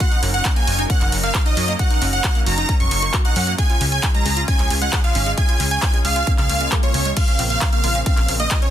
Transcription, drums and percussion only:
0.00 kick, closed hi-hat
0.12 closed hi-hat
0.23 open hi-hat
0.34 closed hi-hat
0.45 kick, clap, closed hi-hat
0.56 closed hi-hat
0.67 open hi-hat
0.79 closed hi-hat
0.90 kick, closed hi-hat
1.01 clap, closed hi-hat
1.12 open hi-hat
1.23 closed hi-hat
1.35 kick, clap, closed hi-hat
1.46 closed hi-hat
1.57 open hi-hat
1.68 closed hi-hat
1.79 kick, closed hi-hat
1.91 closed hi-hat
2.02 open hi-hat
2.13 closed hi-hat
2.24 kick, clap, closed hi-hat
2.35 closed hi-hat
2.46 open hi-hat
2.58 closed hi-hat
2.69 kick, closed hi-hat
2.80 closed hi-hat
2.91 open hi-hat
3.02 closed hi-hat
3.14 kick, clap, closed hi-hat
3.25 closed hi-hat
3.36 open hi-hat
3.47 closed hi-hat
3.58 kick, closed hi-hat
3.70 closed hi-hat
3.81 open hi-hat
3.92 closed hi-hat
4.03 kick, clap, closed hi-hat
4.15 closed hi-hat
4.26 open hi-hat
4.37 closed hi-hat
4.48 kick, closed hi-hat
4.59 clap, closed hi-hat
4.70 open hi-hat
4.82 closed hi-hat
4.93 kick, clap, closed hi-hat
5.04 closed hi-hat
5.15 open hi-hat
5.26 closed hi-hat
5.38 kick, closed hi-hat
5.49 closed hi-hat
5.60 open hi-hat
5.71 closed hi-hat
5.82 kick, clap, closed hi-hat
5.94 closed hi-hat
6.05 open hi-hat
6.16 closed hi-hat
6.27 kick, closed hi-hat
6.38 clap, closed hi-hat
6.50 open hi-hat
6.61 closed hi-hat
6.72 kick, clap, closed hi-hat
6.83 closed hi-hat
6.94 open hi-hat
7.05 closed hi-hat
7.17 kick, closed hi-hat, crash, ride
7.28 closed hi-hat
7.39 open hi-hat
7.50 closed hi-hat
7.61 kick, clap, closed hi-hat, ride
7.73 closed hi-hat
7.84 open hi-hat
7.95 closed hi-hat
8.06 kick, closed hi-hat, ride
8.17 clap, closed hi-hat
8.28 open hi-hat
8.40 closed hi-hat
8.51 kick, clap, closed hi-hat, ride
8.62 closed hi-hat

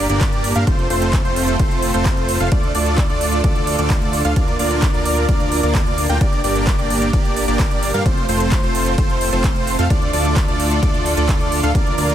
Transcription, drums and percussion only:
0.10 closed hi-hat
0.21 kick, clap, closed hi-hat, ride
0.33 closed hi-hat
0.44 open hi-hat
0.56 closed hi-hat
0.67 kick, closed hi-hat, ride
0.79 closed hi-hat
0.90 open hi-hat
1.02 closed hi-hat
1.13 kick, clap, closed hi-hat, ride
1.25 closed hi-hat
1.36 open hi-hat
1.48 closed hi-hat
1.59 kick, closed hi-hat, ride
1.71 closed hi-hat
1.82 open hi-hat
1.94 closed hi-hat
2.06 kick, clap, closed hi-hat, ride
2.17 closed hi-hat
2.29 open hi-hat
2.40 closed hi-hat
2.52 kick, closed hi-hat, ride
2.63 closed hi-hat
2.75 open hi-hat
2.86 closed hi-hat
2.98 kick, clap, closed hi-hat, ride
3.09 closed hi-hat
3.21 open hi-hat
3.32 closed hi-hat
3.44 kick, closed hi-hat, ride
3.56 closed hi-hat
3.67 open hi-hat
3.79 closed hi-hat
3.90 kick, clap, closed hi-hat, ride
4.02 closed hi-hat
4.13 open hi-hat
4.25 closed hi-hat
4.36 kick, closed hi-hat, ride
4.48 closed hi-hat
4.59 open hi-hat
4.71 closed hi-hat
4.82 kick, clap, closed hi-hat, ride
4.94 closed hi-hat
5.05 open hi-hat
5.17 closed hi-hat
5.29 kick, closed hi-hat, ride
5.40 closed hi-hat
5.52 open hi-hat
5.63 closed hi-hat
5.75 kick, clap, closed hi-hat, ride
5.86 closed hi-hat
5.98 open hi-hat
6.09 closed hi-hat
6.21 kick, closed hi-hat, ride
6.33 closed hi-hat
6.44 open hi-hat
6.56 closed hi-hat
6.67 kick, clap, closed hi-hat, ride
6.79 closed hi-hat
6.90 open hi-hat
7.02 closed hi-hat
7.13 kick, closed hi-hat, ride
7.25 closed hi-hat
7.36 open hi-hat
7.48 closed hi-hat
7.60 kick, clap, closed hi-hat, ride
7.71 closed hi-hat
7.83 open hi-hat
7.94 closed hi-hat
8.06 kick, closed hi-hat, ride
8.17 closed hi-hat
8.29 open hi-hat
8.40 closed hi-hat
8.52 kick, clap, closed hi-hat, ride
8.63 closed hi-hat
8.75 open hi-hat
8.86 closed hi-hat
8.98 kick, closed hi-hat, ride
9.10 closed hi-hat
9.21 open hi-hat
9.33 closed hi-hat
9.44 kick, clap, closed hi-hat, ride
9.56 closed hi-hat
9.67 open hi-hat
9.79 closed hi-hat
9.90 kick, closed hi-hat, ride
10.02 closed hi-hat
10.13 open hi-hat
10.25 closed hi-hat
10.36 kick, clap, closed hi-hat, ride
10.48 closed hi-hat
10.60 open hi-hat
10.71 closed hi-hat
10.83 kick, closed hi-hat, ride
10.94 closed hi-hat
11.06 open hi-hat
11.17 closed hi-hat
11.29 kick, clap, closed hi-hat, ride
11.40 closed hi-hat
11.52 open hi-hat
11.63 closed hi-hat
11.75 kick, closed hi-hat, ride
11.86 closed hi-hat
11.98 open hi-hat
12.10 closed hi-hat

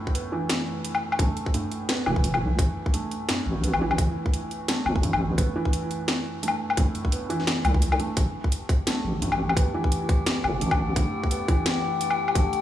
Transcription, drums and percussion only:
0.07 kick
0.15 closed hi-hat
0.49 snare, closed hi-hat
0.85 closed hi-hat
0.95 low woodblock
1.12 low woodblock
1.19 kick, closed hi-hat
1.37 closed hi-hat
1.46 kick
1.54 closed hi-hat
1.72 closed hi-hat
1.89 snare, closed hi-hat
2.06 low woodblock
2.16 kick
2.24 closed hi-hat
2.34 low woodblock
2.59 kick, closed hi-hat
2.86 kick
2.94 closed hi-hat
3.11 closed hi-hat
3.29 snare, closed hi-hat
3.64 closed hi-hat
3.74 low woodblock
3.91 low woodblock
3.98 kick, closed hi-hat
4.26 kick
4.34 closed hi-hat
4.51 closed hi-hat
4.68 snare, closed hi-hat
4.86 low woodblock
4.96 kick
5.03 closed hi-hat
5.13 low woodblock
5.38 kick, closed hi-hat
5.65 kick
5.73 closed hi-hat
5.91 closed hi-hat
6.08 snare, closed hi-hat
6.43 closed hi-hat
6.48 low woodblock
6.70 low woodblock
6.77 kick, closed hi-hat
6.95 closed hi-hat
7.05 kick
7.12 closed hi-hat
7.30 closed hi-hat
7.40 snare
7.47 snare, closed hi-hat
7.65 closed hi-hat, low woodblock
7.74 kick
7.82 closed hi-hat
7.92 low woodblock
8.00 closed hi-hat
8.17 kick, closed hi-hat
8.44 kick
8.52 closed hi-hat
8.69 kick, closed hi-hat
8.87 snare, closed hi-hat
9.22 closed hi-hat
9.32 low woodblock
9.49 low woodblock
9.57 kick, closed hi-hat
9.84 kick
9.92 closed hi-hat
10.09 kick, closed hi-hat
10.26 snare, closed hi-hat
10.44 low woodblock
10.61 closed hi-hat
10.71 kick, low woodblock
10.96 kick, closed hi-hat
11.24 kick
11.31 closed hi-hat
11.48 kick, closed hi-hat
11.66 snare, closed hi-hat
12.01 closed hi-hat
12.11 low woodblock
12.28 low woodblock
12.35 kick, closed hi-hat
12.53 closed hi-hat

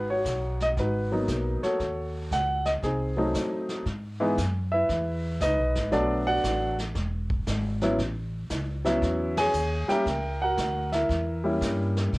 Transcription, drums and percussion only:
0.25 kick, snare, hi-hat pedal
0.60 snare
0.77 brush sweep, kick, snare
1.28 kick, snare, hi-hat pedal
1.63 snare
1.80 brush sweep, kick, snare
2.31 kick, snare, hi-hat pedal
2.65 snare
2.83 brush sweep, kick, snare
3.34 kick, snare, hi-hat pedal
3.69 snare
3.86 brush sweep, kick, snare
4.38 kick, snare, hi-hat pedal
4.89 brush sweep, kick, snare
5.41 kick, snare, hi-hat pedal
5.75 snare
5.92 brush sweep, kick, snare
6.44 kick, snare, hi-hat pedal
6.79 snare
6.95 brush sweep, kick, snare
7.30 kick
7.47 kick, snare, hi-hat pedal
7.81 snare
7.99 brush sweep, kick, snare
8.50 kick, snare, hi-hat pedal
8.85 snare
9.02 brush sweep, kick, snare
9.37 snare, ride
9.54 hi-hat pedal
9.89 snare
10.06 brush sweep, kick, snare
10.58 kick, snare, hi-hat pedal
10.92 snare
11.09 brush sweep, kick, snare
11.61 kick, snare, hi-hat pedal
11.97 snare
12.13 brush sweep, kick, snare

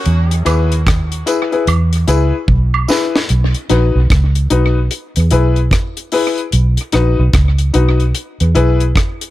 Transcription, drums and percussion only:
0.06 closed hi-hat
0.31 closed hi-hat
0.46 closed hi-hat, tambourine, high woodblock
0.72 closed hi-hat
0.87 kick, cross-stick, closed hi-hat
1.12 closed hi-hat
1.27 closed hi-hat, tambourine
1.52 closed hi-hat
1.67 closed hi-hat, high woodblock
1.93 closed hi-hat
2.08 closed hi-hat, tambourine
2.48 kick
2.74 high woodblock
2.88 snare, tambourine
3.16 snare
3.29 closed hi-hat
3.54 closed hi-hat
3.70 closed hi-hat
4.10 kick, cross-stick, closed hi-hat
4.35 closed hi-hat
4.50 closed hi-hat
4.91 closed hi-hat
5.16 closed hi-hat
5.31 closed hi-hat
5.56 closed hi-hat
5.71 kick, cross-stick, closed hi-hat
5.97 closed hi-hat
6.12 open hi-hat
6.38 closed hi-hat
6.52 closed hi-hat
6.77 closed hi-hat
6.92 cross-stick, closed hi-hat
7.33 kick, cross-stick, closed hi-hat
7.58 closed hi-hat
7.74 closed hi-hat
8.00 closed hi-hat
8.15 closed hi-hat
8.40 closed hi-hat
8.55 closed hi-hat
8.80 closed hi-hat
8.96 kick, cross-stick, closed hi-hat
9.21 closed hi-hat

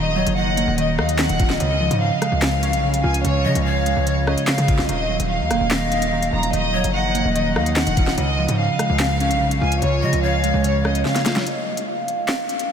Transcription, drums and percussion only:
0.27 closed hi-hat
0.57 closed hi-hat
0.78 closed hi-hat
0.99 cross-stick
1.09 closed hi-hat
1.19 snare, clap
1.29 closed hi-hat
1.40 kick, closed hi-hat
1.50 snare
1.60 closed hi-hat
1.91 closed hi-hat
2.22 cross-stick, closed hi-hat
2.42 snare, clap
2.63 closed hi-hat
2.73 closed hi-hat
2.94 closed hi-hat
3.14 closed hi-hat
3.25 closed hi-hat
3.55 closed hi-hat
3.86 closed hi-hat
4.07 closed hi-hat
4.27 cross-stick
4.38 closed hi-hat
4.47 snare, clap
4.58 closed hi-hat
4.68 kick, closed hi-hat
4.79 snare
4.89 closed hi-hat
5.20 closed hi-hat
5.51 cross-stick, closed hi-hat
5.71 snare, clap
5.92 closed hi-hat
6.02 closed hi-hat
6.23 closed hi-hat
6.43 closed hi-hat
6.53 closed hi-hat
6.84 closed hi-hat
7.15 closed hi-hat
7.36 closed hi-hat
7.56 cross-stick
7.66 closed hi-hat
7.76 snare, clap
7.87 closed hi-hat
7.97 kick, closed hi-hat
8.07 snare
8.18 closed hi-hat
8.49 closed hi-hat
8.79 cross-stick, closed hi-hat
8.99 snare, clap
9.20 closed hi-hat
9.31 closed hi-hat
9.51 closed hi-hat
9.72 closed hi-hat
9.82 closed hi-hat
10.13 closed hi-hat
10.44 closed hi-hat
10.64 closed hi-hat
10.85 cross-stick
10.95 closed hi-hat
11.05 snare
11.16 snare, closed hi-hat
11.26 snare, closed hi-hat
11.36 snare
11.47 closed hi-hat
11.77 closed hi-hat
12.08 closed hi-hat
12.28 snare, clap
12.49 closed hi-hat
12.59 closed hi-hat

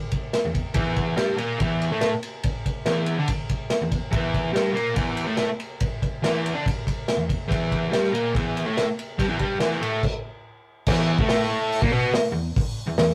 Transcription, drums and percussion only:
0.12 kick, ride
0.33 snare, ride
0.55 kick, ride
0.74 kick, ride
0.96 kick, ride
1.17 snare, ride
1.38 ride
1.60 kick, ride
1.82 ride
2.01 snare, ride
2.23 ride
2.43 kick, ride
2.66 kick, ride
2.86 snare, ride
3.06 ride
3.28 kick, ride
3.49 kick, ride
3.70 snare, ride
3.92 kick, ride
4.13 kick, ride
4.34 kick, ride
4.56 snare, ride
4.77 ride
4.96 kick, ride
5.17 ride
5.37 snare, ride
5.60 ride
5.80 kick, ride
6.02 kick, ride
6.24 snare, ride
6.46 ride
6.66 kick, ride
6.87 kick, ride
7.08 snare, ride
7.29 kick, ride
7.51 kick, ride
7.72 kick, ride
7.93 snare, ride
8.04 snare
8.15 ride
8.35 kick, ride
8.57 ride
8.77 snare, ride
8.99 ride
9.19 kick, ride
9.39 kick, ride
9.60 snare, ride
9.71 snare
9.83 ride
10.03 kick, crash
10.87 kick, crash
11.19 kick
11.29 snare, open hi-hat
11.72 open hi-hat
11.82 kick
12.14 snare, open hi-hat
12.56 kick, open hi-hat
12.98 snare, open hi-hat

